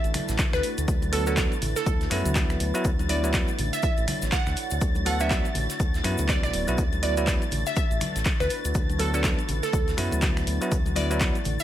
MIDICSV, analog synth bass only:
0, 0, Header, 1, 2, 480
1, 0, Start_track
1, 0, Key_signature, 2, "major"
1, 0, Tempo, 491803
1, 859, Time_signature, 4, 2, 24, 8
1, 11355, End_track
2, 0, Start_track
2, 0, Title_t, "Analog synth bass"
2, 0, Program_c, 0, 38
2, 40, Note_on_c, 0, 33, 84
2, 121, Note_off_c, 0, 33, 0
2, 281, Note_on_c, 0, 33, 89
2, 362, Note_off_c, 0, 33, 0
2, 521, Note_on_c, 0, 38, 104
2, 602, Note_off_c, 0, 38, 0
2, 760, Note_on_c, 0, 38, 103
2, 841, Note_off_c, 0, 38, 0
2, 859, Note_on_c, 0, 38, 103
2, 1442, Note_off_c, 0, 38, 0
2, 1579, Note_on_c, 0, 33, 96
2, 1696, Note_off_c, 0, 33, 0
2, 1819, Note_on_c, 0, 38, 104
2, 2025, Note_off_c, 0, 38, 0
2, 2058, Note_on_c, 0, 42, 82
2, 2176, Note_off_c, 0, 42, 0
2, 2200, Note_on_c, 0, 38, 101
2, 2511, Note_off_c, 0, 38, 0
2, 2538, Note_on_c, 0, 38, 93
2, 2656, Note_off_c, 0, 38, 0
2, 2779, Note_on_c, 0, 38, 109
2, 3362, Note_off_c, 0, 38, 0
2, 3499, Note_on_c, 0, 33, 103
2, 3616, Note_off_c, 0, 33, 0
2, 3880, Note_on_c, 0, 33, 83
2, 3961, Note_off_c, 0, 33, 0
2, 4120, Note_on_c, 0, 33, 90
2, 4201, Note_off_c, 0, 33, 0
2, 4359, Note_on_c, 0, 38, 110
2, 4441, Note_off_c, 0, 38, 0
2, 4601, Note_on_c, 0, 38, 96
2, 4682, Note_off_c, 0, 38, 0
2, 4699, Note_on_c, 0, 38, 104
2, 5282, Note_off_c, 0, 38, 0
2, 5418, Note_on_c, 0, 33, 96
2, 5536, Note_off_c, 0, 33, 0
2, 5659, Note_on_c, 0, 38, 102
2, 5865, Note_off_c, 0, 38, 0
2, 5898, Note_on_c, 0, 42, 77
2, 6016, Note_off_c, 0, 42, 0
2, 6041, Note_on_c, 0, 38, 106
2, 6274, Note_off_c, 0, 38, 0
2, 6280, Note_on_c, 0, 35, 97
2, 6361, Note_off_c, 0, 35, 0
2, 6378, Note_on_c, 0, 26, 91
2, 6496, Note_off_c, 0, 26, 0
2, 6520, Note_on_c, 0, 35, 99
2, 6601, Note_off_c, 0, 35, 0
2, 6619, Note_on_c, 0, 38, 102
2, 7202, Note_off_c, 0, 38, 0
2, 7339, Note_on_c, 0, 33, 93
2, 7456, Note_off_c, 0, 33, 0
2, 7720, Note_on_c, 0, 33, 86
2, 7801, Note_off_c, 0, 33, 0
2, 7959, Note_on_c, 0, 33, 88
2, 8041, Note_off_c, 0, 33, 0
2, 8201, Note_on_c, 0, 38, 105
2, 8282, Note_off_c, 0, 38, 0
2, 8440, Note_on_c, 0, 38, 100
2, 8522, Note_off_c, 0, 38, 0
2, 8539, Note_on_c, 0, 38, 101
2, 9122, Note_off_c, 0, 38, 0
2, 9258, Note_on_c, 0, 33, 97
2, 9376, Note_off_c, 0, 33, 0
2, 9499, Note_on_c, 0, 38, 105
2, 9705, Note_off_c, 0, 38, 0
2, 9737, Note_on_c, 0, 42, 83
2, 9855, Note_off_c, 0, 42, 0
2, 9879, Note_on_c, 0, 38, 99
2, 10191, Note_off_c, 0, 38, 0
2, 10217, Note_on_c, 0, 38, 99
2, 10335, Note_off_c, 0, 38, 0
2, 10459, Note_on_c, 0, 38, 104
2, 11042, Note_off_c, 0, 38, 0
2, 11178, Note_on_c, 0, 33, 97
2, 11296, Note_off_c, 0, 33, 0
2, 11355, End_track
0, 0, End_of_file